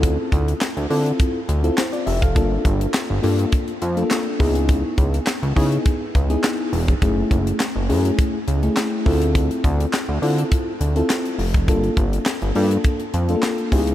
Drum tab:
HH |x-xxxxoxx-xxxxox|x-xxx-oxxxxxx-ox|x-xxxxoxx-xxx-ox|x-xxx-oxx-xxx-ox|
CP |----x-------x---|----x-------x---|----x-------x---|----x-------x---|
SD |----o-------o---|----o-------o---|----o-------o---|----o-------o---|
BD |o-o-----o------o|o-o-----o-----o-|o-o---o-o-o----o|o-o-----o-----o-|

HH |xxxxx-oxx-xxxxox|xxxxxxoxxxxxxxox|
CP |----x-------x---|----x-------x---|
SD |----o-------o---|----o-------o---|
BD |o-o-----o------o|o-o-----o-----o-|